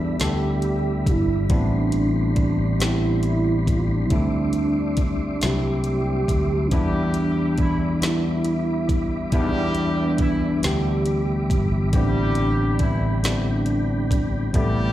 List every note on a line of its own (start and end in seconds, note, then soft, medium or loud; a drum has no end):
0.00 0.16 E2 loud
0.00 0.19 G3 medium
0.00 0.20 B3 medium
0.00 0.17 D4 loud
0.00 0.20 D4 medium
0.00 0.21 E4 medium
0.00 11.89 G4 medium
0.00 0.22 A4 medium
0.00 4.07 D5 medium
0.00 1.46 E5 medium
0.00 4.07 B5 medium
0.19 1.09 D2 medium
0.19 1.32 G3 medium
0.19 1.32 B3 medium
0.19 1.33 D4 medium
0.19 1.33 E4 medium
0.19 1.12 G4 loud
0.19 1.33 A4 medium
0.19 snare loud
0.19 closed hi-hat medium
0.62 closed hi-hat medium
1.06 1.46 G1 medium
1.06 1.54 E4 loud
1.06 kick loud
1.06 closed hi-hat medium
1.49 4.12 A1 loud
1.49 2.62 G3 medium
1.49 2.63 B3 medium
1.49 2.63 C4 medium
1.49 2.63 D4 medium
1.49 2.85 D4 loud
1.49 2.64 E4 medium
1.49 6.68 C6 medium
1.49 kick loud
1.49 closed hi-hat medium
1.92 closed hi-hat medium
2.36 kick loud
2.36 closed hi-hat medium
2.79 3.93 G3 medium
2.79 3.93 B3 medium
2.79 3.93 C4 medium
2.79 3.94 D4 medium
2.79 3.94 G4 medium
2.79 snare loud
2.79 closed hi-hat medium
2.84 3.78 E4 loud
3.23 closed hi-hat medium
3.67 kick medium
3.67 closed hi-hat medium
3.77 3.87 F4 loud
3.86 3.97 E4 medium
3.95 4.06 D4 medium
4.04 4.12 E4 medium
4.10 5.38 D2 loud
4.10 5.23 G3 medium
4.10 5.24 A3 medium
4.10 5.24 C4 medium
4.10 5.24 D4 medium
4.10 5.25 E4 medium
4.10 11.89 E5 medium
4.10 11.89 D6 medium
4.10 kick loud
4.10 closed hi-hat medium
4.14 5.46 D4 loud
4.53 closed hi-hat medium
4.97 kick medium
4.97 closed hi-hat medium
5.41 6.25 C2 loud
5.41 5.47 F#3 medium
5.41 6.54 A3 medium
5.41 6.54 C4 medium
5.41 6.55 D4 medium
5.41 6.55 E4 medium
5.41 snare loud
5.41 closed hi-hat medium
5.45 6.57 G3 medium
5.45 6.69 G4 loud
5.84 closed hi-hat medium
6.28 6.68 D2 medium
6.28 kick medium
6.28 closed hi-hat medium
6.67 7.84 E3 medium
6.67 6.77 C#4 medium
6.67 closed hi-hat medium
6.71 9.29 E2 loud
6.71 6.78 F3 medium
6.71 7.55 G3 medium
6.71 7.85 B3 medium
6.71 7.85 D4 medium
6.71 8.07 D4 loud
6.71 7.85 E4 medium
6.71 7.55 G4 loud
6.71 14.50 B5 medium
6.71 kick loud
6.78 7.88 G3 medium
7.14 closed hi-hat medium
7.58 7.94 E3 medium
7.58 7.94 E4 medium
7.58 kick loud
7.58 closed hi-hat medium
8.01 9.14 E3 medium
8.01 9.15 G3 medium
8.01 9.15 B3 medium
8.01 9.16 D4 medium
8.01 9.16 E4 medium
8.01 9.34 E4 loud
8.01 snare loud
8.01 closed hi-hat medium
8.44 closed hi-hat medium
8.89 kick medium
8.89 closed hi-hat medium
9.32 10.59 E2 loud
9.32 10.45 E3 medium
9.32 10.45 G3 medium
9.32 10.16 G3 loud
9.32 10.46 B3 medium
9.32 10.46 D4 medium
9.32 10.60 D4 loud
9.32 10.46 E4 medium
9.32 10.15 G4 loud
9.32 kick loud
9.32 closed hi-hat medium
9.75 closed hi-hat medium
10.18 10.54 E3 medium
10.18 10.54 E4 medium
10.18 kick medium
10.18 closed hi-hat medium
10.62 11.52 D2 medium
10.62 11.75 E3 medium
10.62 11.76 G3 medium
10.62 11.76 B3 medium
10.62 11.76 D4 medium
10.62 11.77 G4 medium
10.62 11.91 G4 loud
10.62 snare loud
10.62 closed hi-hat medium
11.06 closed hi-hat soft
11.50 11.94 G1 medium
11.50 kick medium
11.50 closed hi-hat medium
11.93 14.51 A1 loud
11.93 13.06 D3 medium
11.93 12.76 G3 loud
11.93 13.06 G3 medium
11.93 13.07 B3 medium
11.93 13.07 C4 medium
11.93 13.21 D4 loud
11.93 13.07 E4 medium
11.93 12.76 G4 loud
11.93 14.93 G4 medium
11.93 14.52 D5 medium
11.93 14.93 G5 medium
11.93 kick loud
11.93 closed hi-hat medium
12.35 closed hi-hat medium
12.79 13.15 E3 medium
12.79 13.15 E4 medium
12.79 kick medium
12.79 closed hi-hat medium
13.23 14.36 D3 medium
13.23 14.37 G3 medium
13.23 14.37 B3 medium
13.23 14.37 C4 medium
13.23 14.51 D4 loud
13.23 14.37 E4 medium
13.23 snare loud
13.23 closed hi-hat medium
13.66 closed hi-hat medium
14.11 kick loud
14.11 closed hi-hat medium
14.53 14.93 A1 loud
14.53 14.93 C3 medium
14.53 14.93 G3 medium
14.53 14.93 G3 loud
14.53 14.93 A3 medium
14.53 14.93 B3 medium
14.53 14.93 E4 medium
14.53 14.93 G4 loud
14.53 14.93 B4 medium
14.53 14.93 A5 medium
14.53 kick loud
14.53 closed hi-hat medium